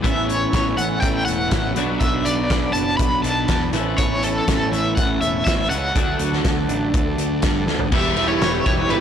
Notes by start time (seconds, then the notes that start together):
0.02 A1 A2 E3 B3 C#4 E4 A4 C#5 E5 B5, kick, closed hi-hat
0.29 C#5, closed hi-hat
0.53 A1, kick, snare, closed hi-hat
0.77 A1 E3 B3 C#4 F#5, closed hi-hat
1.00 A1 G5, kick, closed hi-hat
1.25 E1 F#5, closed hi-hat
1.51 A1, kick, snare, closed hi-hat
1.75 B1 B2 F#3 B3 D4 F#4 B4 D5, closed hi-hat
2.00 B1 E5, kick, closed hi-hat
2.25 B1 D5, closed hi-hat
2.48 B1 F#3 B3 D4, kick, snare, closed hi-hat
2.73 F#1 A5, closed hi-hat
2.97 B1 B5, kick, closed hi-hat
3.23 B1 A5, closed hi-hat
3.48 E2, kick, snare, closed hi-hat
3.72 A1 A2 E3 B3 C#4 E4 B4 C#5 A5, closed hi-hat
3.76 E4
3.98 A1 C#5, kick, closed hi-hat
4.23 A4, closed hi-hat
4.46 A1 E3 B3 C#4, kick, snare, closed hi-hat
4.72 A1 E5, closed hi-hat
4.96 A1 F#5, kick, closed hi-hat
5.21 E1 E5, closed hi-hat
5.45 A1 E5, kick, snare, closed hi-hat
5.70 C#2 F#5, closed hi-hat
5.94 D2 D3 F#3 A3 D4 F#4 A4 D5, kick, closed hi-hat
5.98 F#4
6.19 D2, closed hi-hat
6.33 snare
6.45 D2, kick, snare, closed hi-hat
6.68 A1 F#3 A3 D4, closed hi-hat
6.94 D2, kick, closed hi-hat
7.17 D2, closed hi-hat
7.42 G2, kick, snare, closed hi-hat
7.67 D2, snare
7.79 floor tom
7.92 E1 E2 B2 E3 G3 B3 E4 G4 B4 E5 B5, kick, crash
8.16 E1 E2 B2 E3 G3 B3 E4 G4, ride
8.28 C#5
8.41 E1 E2 B2 E3 G3 B3 E4 G4, snare, ride
8.66 E1 E2 B2 E3 G3 B3 E4 G4 C#5, kick, ride
8.90 G1 E2 B2 E3 G3 B3 E4 G4 B4, ride